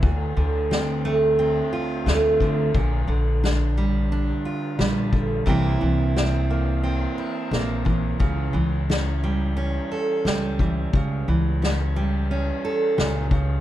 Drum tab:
RD |xxxxxxxx|xxxxxxxx|xxxxxxxx|xxxxxxxx|
SD |--o---o-|--o---o-|--o---o-|--o---o-|
BD |o------o|o------o|o------o|o------o|

RD |xxxxxxxx|
SD |--o---o-|
BD |o------o|